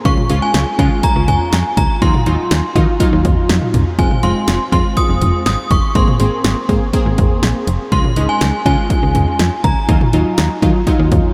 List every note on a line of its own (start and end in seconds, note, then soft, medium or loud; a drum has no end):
0.05 0.16 C#2 loud
0.05 0.24 G#3 medium
0.05 0.24 C#4 medium
0.05 0.24 F4 medium
0.05 0.40 C#6 loud
0.05 kick loud
0.05 closed hi-hat medium
0.18 mid tom medium
0.30 0.41 C#2 loud
0.30 0.67 G#3 medium
0.30 0.67 C#4 medium
0.30 0.67 F4 medium
0.30 closed hi-hat medium
0.42 0.78 G#5 loud
0.54 0.65 C#2 loud
0.54 snare loud
0.54 closed hi-hat medium
0.79 0.90 C#3 loud
0.79 1.53 G#3 medium
0.79 1.53 C#4 medium
0.79 1.53 F4 medium
0.79 1.04 G#5 medium
0.79 kick medium
0.79 closed hi-hat medium
1.03 1.29 A#5 loud
1.03 kick medium
1.03 closed hi-hat medium
1.16 1.27 C#2 medium
1.28 1.39 C#2 medium
1.28 1.79 G#5 medium
1.28 closed hi-hat medium
1.28 mid tom medium
1.53 1.64 F2 medium
1.53 snare loud
1.53 closed hi-hat medium
1.77 1.88 C#2 medium
1.77 1.88 A#5 medium
1.77 kick medium
1.77 closed hi-hat medium
2.02 2.13 D#2 loud
2.02 2.20 F#3 medium
2.02 2.20 D#4 medium
2.02 2.20 F4 medium
2.02 3.70 C6 medium
2.02 kick loud
2.02 closed hi-hat medium
2.14 mid tom medium
2.26 2.37 D#2 medium
2.26 2.63 F#3 medium
2.26 2.63 D#4 medium
2.26 2.63 F4 medium
2.26 closed hi-hat medium
2.51 2.62 D#2 loud
2.51 snare loud
2.51 closed hi-hat medium
2.76 2.86 D#3 medium
2.76 2.94 F#3 medium
2.76 2.94 D#4 medium
2.76 2.94 F4 loud
2.76 kick loud
2.76 closed hi-hat medium
3.00 3.74 F#3 medium
3.00 3.74 D#4 medium
3.00 3.74 F4 loud
3.00 kick medium
3.00 closed hi-hat medium
3.13 3.23 D#2 loud
3.25 3.36 D#2 medium
3.25 kick loud
3.25 closed hi-hat medium
3.25 mid tom medium
3.49 3.60 F2 medium
3.49 snare loud
3.49 closed hi-hat medium
3.62 mid tom medium
3.74 3.85 C2 medium
3.74 closed hi-hat medium
3.74 mid tom loud
3.99 4.09 F1 loud
3.99 4.17 G#3 medium
3.99 4.17 C4 medium
3.99 4.17 F4 medium
3.99 4.24 G#5 medium
3.99 kick loud
3.99 closed hi-hat medium
4.11 mid tom medium
4.23 4.34 F1 loud
4.23 4.60 G#3 medium
4.23 4.60 C4 medium
4.23 4.60 F4 medium
4.23 4.71 C6 medium
4.23 closed hi-hat medium
4.48 4.59 F1 medium
4.48 snare loud
4.48 closed hi-hat medium
4.72 4.83 F2 loud
4.72 5.46 G#3 medium
4.72 5.46 C4 medium
4.72 5.46 F4 medium
4.72 4.98 C6 medium
4.72 kick medium
4.72 closed hi-hat medium
4.97 5.45 D#6 loud
4.97 kick medium
4.97 closed hi-hat medium
5.09 5.20 F1 medium
5.21 5.32 F1 loud
5.21 closed hi-hat medium
5.21 mid tom medium
5.46 5.57 G#1 medium
5.46 5.72 D#6 loud
5.46 snare loud
5.46 closed hi-hat medium
5.71 5.82 F1 loud
5.71 5.96 C#6 medium
5.71 kick medium
5.71 closed hi-hat medium
5.95 6.06 G#1 loud
5.95 6.14 A#3 medium
5.95 6.14 C4 medium
5.95 6.14 G#4 medium
5.95 6.90 C6 medium
5.95 kick loud
5.95 closed hi-hat medium
6.08 mid tom medium
6.20 6.31 G#1 loud
6.20 6.57 A#3 medium
6.20 6.57 C4 medium
6.20 6.57 G#4 medium
6.20 closed hi-hat medium
6.44 6.55 G#1 medium
6.44 snare loud
6.44 closed hi-hat medium
6.69 6.80 G#2 loud
6.69 6.88 A#3 medium
6.69 6.87 C4 medium
6.69 6.88 G#4 medium
6.69 kick medium
6.69 closed hi-hat medium
6.93 7.68 A#3 medium
6.93 7.68 C4 medium
6.93 7.68 G#4 loud
6.93 kick medium
6.93 closed hi-hat medium
7.06 7.17 G#1 loud
7.18 7.29 G#1 loud
7.18 kick medium
7.18 closed hi-hat medium
7.18 mid tom medium
7.43 7.54 A#1 medium
7.43 snare loud
7.43 closed hi-hat medium
7.67 7.78 F1 medium
7.67 closed hi-hat medium
7.92 8.03 C#2 loud
7.92 8.10 G#3 medium
7.92 8.10 C#4 medium
7.92 8.10 F4 medium
7.92 8.30 C6 loud
7.92 kick loud
7.92 closed hi-hat medium
8.04 mid tom medium
8.16 8.28 C#2 medium
8.16 8.54 G#3 medium
8.16 8.54 C#4 medium
8.16 8.54 D#4 medium
8.16 closed hi-hat medium
8.29 8.65 G#5 medium
8.41 8.52 C#2 loud
8.41 snare loud
8.41 closed hi-hat medium
8.66 8.77 C#3 loud
8.66 9.40 G#3 medium
8.66 9.40 C#4 medium
8.66 9.40 F4 medium
8.66 9.67 G#5 medium
8.66 kick medium
8.66 closed hi-hat medium
8.90 kick medium
8.90 closed hi-hat medium
9.03 9.14 C#2 loud
9.15 9.26 C#2 loud
9.15 closed hi-hat medium
9.15 mid tom medium
9.39 9.51 F2 medium
9.39 snare loud
9.39 closed hi-hat medium
9.64 9.75 C#2 loud
9.64 10.58 A#5 medium
9.64 kick medium
9.64 closed hi-hat medium
9.89 10.00 D#2 loud
9.89 10.07 F#3 medium
9.89 10.07 D#4 medium
9.89 10.07 F4 medium
9.89 kick loud
9.89 closed hi-hat medium
10.01 mid tom medium
10.13 10.24 D#2 medium
10.13 10.50 F#3 medium
10.13 10.50 D#4 medium
10.13 10.50 F4 medium
10.13 closed hi-hat medium
10.38 10.49 D#2 loud
10.38 snare loud
10.38 closed hi-hat medium
10.62 10.73 D#3 loud
10.62 10.81 F#3 medium
10.62 10.81 D#4 medium
10.62 10.81 F4 loud
10.62 kick loud
10.62 closed hi-hat medium
10.87 11.34 F#3 medium
10.87 11.34 D#4 medium
10.87 11.34 F4 medium
10.87 kick medium
10.87 closed hi-hat medium
10.99 11.10 D#2 loud
11.12 11.23 D#2 loud
11.12 kick medium
11.12 closed hi-hat medium
11.12 mid tom medium